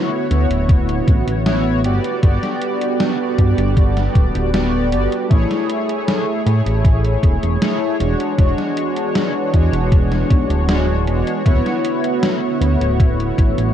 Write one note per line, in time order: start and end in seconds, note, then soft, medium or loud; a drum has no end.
0.00 1.82 D3 medium
0.00 1.82 A3 medium
0.00 0.25 B3 medium
0.00 1.81 B3 medium
0.00 0.26 E4 medium
0.00 1.82 E4 medium
0.00 0.26 F#4 medium
0.00 0.27 C#5 loud
0.00 1.80 C#5 medium
0.00 5.27 F#5 medium
0.29 0.46 D2 medium
0.29 1.41 B3 medium
0.29 1.41 E4 medium
0.29 1.42 F#4 medium
0.29 1.42 C#5 medium
0.29 closed hi-hat medium
0.50 1.01 D1 medium
0.50 closed hi-hat medium
0.69 kick loud
0.69 closed hi-hat medium
0.89 closed hi-hat soft
1.07 1.23 A1 medium
1.07 kick loud
1.07 closed hi-hat medium
1.27 1.86 A1 medium
1.27 closed hi-hat medium
1.45 1.79 B3 loud
1.45 1.80 E4 medium
1.45 1.80 F#4 medium
1.45 1.80 C#5 loud
1.45 snare loud
1.45 closed hi-hat medium
1.84 2.00 G1 medium
1.84 5.27 G3 medium
1.84 2.18 B3 medium
1.84 5.27 D4 medium
1.84 2.18 F#4 medium
1.84 2.19 G4 medium
1.84 5.27 A4 medium
1.84 5.27 B4 medium
1.84 2.19 D5 medium
1.84 closed hi-hat medium
2.04 closed hi-hat medium
2.22 2.38 G1 loud
2.22 3.33 B3 medium
2.22 3.34 F#4 medium
2.22 3.34 G4 medium
2.22 3.35 D5 loud
2.22 kick loud
2.22 closed hi-hat medium
2.43 snare soft
2.43 closed hi-hat soft
2.61 closed hi-hat medium
2.81 closed hi-hat medium
3.00 snare loud
3.00 closed hi-hat medium
3.37 3.54 G2 medium
3.37 4.49 B3 medium
3.37 4.49 F#4 medium
3.37 4.50 G4 medium
3.37 4.50 D5 medium
3.37 kick medium
3.37 closed hi-hat medium
3.58 4.09 G1 loud
3.58 closed hi-hat medium
3.77 kick loud
3.77 closed hi-hat medium
3.97 snare soft
3.97 closed hi-hat soft
4.15 4.31 D1 medium
4.15 kick loud
4.15 closed hi-hat medium
4.35 4.94 D1 medium
4.35 closed hi-hat medium
4.53 4.87 B3 loud
4.53 4.87 F#4 medium
4.53 4.88 G4 medium
4.53 4.88 D5 loud
4.53 snare loud
4.53 closed hi-hat medium
4.91 5.08 G1 medium
4.91 5.26 B3 medium
4.91 5.26 F#4 medium
4.91 5.26 G4 medium
4.91 5.26 D5 medium
4.91 closed hi-hat medium
5.12 closed hi-hat medium
5.29 5.46 A1 loud
5.29 6.40 A3 medium
5.29 7.97 A3 medium
5.29 6.41 E4 medium
5.29 6.42 G#4 medium
5.29 7.97 G#4 medium
5.29 13.74 C#5 medium
5.29 6.42 C#5 loud
5.29 kick loud
5.29 closed hi-hat medium
5.51 snare soft
5.51 closed hi-hat soft
5.70 closed hi-hat medium
5.90 closed hi-hat medium
6.08 snare loud
6.08 closed hi-hat medium
6.44 6.62 A2 medium
6.44 7.56 A3 medium
6.44 7.56 E4 medium
6.44 7.57 G#4 medium
6.44 7.58 C#5 medium
6.44 closed hi-hat medium
6.66 7.17 A1 loud
6.66 closed hi-hat medium
6.85 kick loud
6.85 closed hi-hat medium
7.05 closed hi-hat soft
7.23 7.38 E1 medium
7.23 kick loud
7.23 closed hi-hat medium
7.43 7.57 E1 medium
7.43 closed hi-hat medium
7.61 7.95 A3 loud
7.61 7.95 E4 medium
7.61 7.96 G#4 medium
7.61 7.96 C#5 loud
7.61 snare loud
7.61 closed hi-hat medium
7.99 8.15 E1 medium
7.99 11.43 E3 medium
7.99 8.33 G#3 medium
7.99 13.74 B3 medium
7.99 8.34 D4 medium
7.99 11.43 D4 medium
7.99 8.34 F#4 medium
7.99 11.43 G#4 medium
7.99 8.34 C#5 medium
7.99 13.74 F#5 medium
7.99 closed hi-hat medium
8.20 closed hi-hat soft
8.37 8.54 E1 loud
8.37 9.49 G#3 medium
8.37 9.49 D4 medium
8.37 9.50 F#4 medium
8.37 9.50 C#5 loud
8.37 kick loud
8.37 closed hi-hat medium
8.58 snare soft
8.58 closed hi-hat soft
8.77 closed hi-hat medium
8.96 closed hi-hat medium
9.15 snare loud
9.15 closed hi-hat medium
9.53 9.69 E2 medium
9.53 10.64 G#3 medium
9.53 10.65 D4 medium
9.53 10.65 F#4 medium
9.53 10.66 C#5 medium
9.53 kick medium
9.53 closed hi-hat medium
9.73 10.24 E1 loud
9.73 closed hi-hat medium
9.92 kick loud
9.92 closed hi-hat medium
10.12 snare soft
10.12 closed hi-hat soft
10.30 10.46 B1 medium
10.30 kick loud
10.30 closed hi-hat medium
10.50 11.09 D1 medium
10.50 closed hi-hat medium
10.69 11.03 G#3 loud
10.69 11.03 D4 medium
10.69 11.03 F#4 medium
10.69 11.04 C#5 loud
10.69 snare loud
10.69 closed hi-hat medium
11.07 11.23 E1 medium
11.07 11.41 G#3 medium
11.07 11.41 D4 medium
11.07 11.42 F#4 medium
11.07 11.42 C#5 medium
11.07 closed hi-hat medium
11.27 closed hi-hat medium
11.44 11.61 D1 loud
11.44 13.74 D3 medium
11.44 13.74 A3 medium
11.44 12.56 B3 medium
11.44 12.56 E4 medium
11.44 13.74 E4 medium
11.44 12.57 F#4 medium
11.44 12.57 C#5 loud
11.44 kick loud
11.44 closed hi-hat medium
11.66 snare soft
11.66 closed hi-hat soft
11.85 closed hi-hat medium
12.04 closed hi-hat medium
12.23 snare loud
12.23 closed hi-hat medium
12.60 12.77 D2 medium
12.60 13.71 B3 medium
12.60 13.72 E4 medium
12.60 13.72 F#4 medium
12.60 13.73 C#5 medium
12.60 closed hi-hat medium
12.81 13.32 D1 loud
12.81 closed hi-hat medium
13.00 kick loud
13.00 closed hi-hat medium
13.20 closed hi-hat soft
13.38 13.54 A1 medium
13.38 kick loud
13.38 closed hi-hat medium
13.58 13.74 A1 medium
13.58 closed hi-hat medium